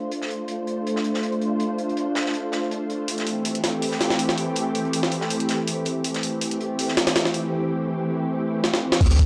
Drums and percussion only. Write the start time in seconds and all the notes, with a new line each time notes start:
0.12 closed hi-hat
0.22 snare
0.30 closed hi-hat
0.48 closed hi-hat
0.67 closed hi-hat
0.87 closed hi-hat
0.96 snare
1.04 closed hi-hat
1.14 snare
1.23 closed hi-hat
1.32 closed hi-hat
1.41 closed hi-hat
1.60 closed hi-hat
1.78 closed hi-hat
1.89 closed hi-hat
1.97 closed hi-hat
2.15 snare, closed hi-hat
2.26 snare
2.34 closed hi-hat
2.52 snare, closed hi-hat
2.71 closed hi-hat
2.90 closed hi-hat
3.08 closed hi-hat, open hi-hat
3.18 snare, closed hi-hat
3.27 closed hi-hat, open hi-hat
3.45 closed hi-hat, open hi-hat
3.55 closed hi-hat
3.64 snare, closed hi-hat, open hi-hat
3.82 closed hi-hat, open hi-hat
3.91 snare
4.01 snare, closed hi-hat, open hi-hat
4.10 snare
4.19 closed hi-hat, open hi-hat
4.29 snare, closed hi-hat
4.37 closed hi-hat, open hi-hat
4.56 closed hi-hat, open hi-hat
4.75 closed hi-hat, open hi-hat
4.85 closed hi-hat
4.93 closed hi-hat, open hi-hat
5.03 snare
5.11 closed hi-hat, open hi-hat
5.21 snare
5.30 closed hi-hat, open hi-hat
5.40 closed hi-hat
5.49 snare, closed hi-hat, open hi-hat
5.68 closed hi-hat, open hi-hat
5.85 closed hi-hat, open hi-hat
6.04 closed hi-hat, open hi-hat
6.15 snare, closed hi-hat
6.23 closed hi-hat, open hi-hat
6.41 closed hi-hat, open hi-hat
6.51 closed hi-hat
6.60 closed hi-hat
6.79 closed hi-hat, open hi-hat
6.88 snare
6.97 snare, closed hi-hat, open hi-hat
7.07 snare, open hi-hat
7.15 snare, closed hi-hat, open hi-hat
7.25 snare, closed hi-hat
7.34 closed hi-hat, open hi-hat
8.64 snare
8.73 snare
8.92 snare
9.01 kick, open hi-hat, crash
9.11 closed hi-hat
9.19 kick, open hi-hat